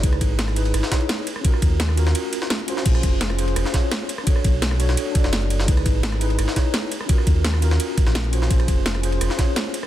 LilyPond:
<<
  \new Staff \with { instrumentName = "Tine electric piano" } { \time 4/4 \key bes \minor \tempo 4 = 170 <ees' fes' aes' ces''>4. <ees' fes' aes' ces''>4 <ees' fes' aes' des''>4 r8 | <des' f' ges' bes'>4. <des' f' ges' bes'>4 r4 <des' f' ges' c''>8 | <des' f' aes' c''>4. <des' f' aes' c''>4 <des' f' aes' des''>4 r8 | <d' fis' a' cis''>4. <d' fis' a' cis''>4 <d' fis' a' d''>4. |
<ees' fes' aes' ces''>4. <ees' fes' aes' ces''>4 <ees' fes' aes' des''>4 r8 | <des' f' ges' bes'>4. <des' f' ges' bes'>4 r4 <des' f' ges' c''>8 | <des' f' aes' c''>4. <des' f' aes' c''>4 <des' f' aes' des''>4 r8 | }
  \new Staff \with { instrumentName = "Sub bass" } { \clef bass \time 4/4 \key bes \minor des,8 aes,,4. aes,,16 r4. r16 | r8 ees,4. r2 | bes,,8 f,,4. f,,16 r4. r16 | r8 b,,4. r8. fis,,4~ fis,,16 |
des,8 aes,,4. aes,,16 r4. r16 | r8 ees,4. r8. bes,,4~ bes,,16 | bes,,8 f,,4. f,,16 r4. r16 | }
  \new DrumStaff \with { instrumentName = "Drums" } \drummode { \time 4/4 <hh bd cymr>16 <cymr ss>16 <hh bd cymr>8 <hh cymr sn>16 <cymr ss>16 <hh cymr>16 cymr16 <hh cymr ss>16 sn16 <hh bd cymr sn>16 cymr16 <hh cymr sn>8 <hh cymr>16 ss16 | <hh bd cymr>16 ss16 <hh bd cymr>8 <hh cymr sn>16 ss16 <hh cymr>16 sn16 <hh cymr>8 <hh cymr>16 sn16 <hh cymr sn>16 cymr16 <hh cymr>16 sn16 | <cymc hh bd cymr>16 <cymr ss>16 <hh bd cymr>8 <hh cymr sn>16 <cymr ss>16 <hh cymr>16 cymr16 <hh cymr ss>16 sn16 <hh bd cymr sn>8 <hh cymr sn>8 <hh cymr>16 ss16 | <hh bd cymr>16 ss16 <hh bd cymr>8 <hh cymr sn>16 ss16 <hh cymr>16 sn16 <hh cymr>8 <hh bd cymr>16 sn16 <hh cymr sn>16 cymr16 <hh cymr>16 sn16 |
<hh bd cymr>16 <cymr ss>16 <hh bd cymr>8 <hh cymr sn>16 <cymr ss>16 <hh cymr>16 cymr16 <hh cymr ss>16 sn16 <hh bd cymr sn>8 <hh cymr sn>8 <hh cymr>16 ss16 | <hh bd cymr>16 ss16 <hh bd cymr>8 <hh cymr sn>16 ss16 <hh cymr>16 sn16 <hh cymr>8 <hh bd cymr>16 sn16 <hh cymr sn>16 cymr16 <hh cymr>16 sn16 | <hh bd cymr>16 <cymr ss>16 <hh bd cymr>8 <hh cymr sn>16 <cymr ss>16 <hh cymr>16 cymr16 <hh cymr ss>16 sn16 <hh bd cymr sn>8 <hh cymr sn>8 <hh cymr>16 ss16 | }
>>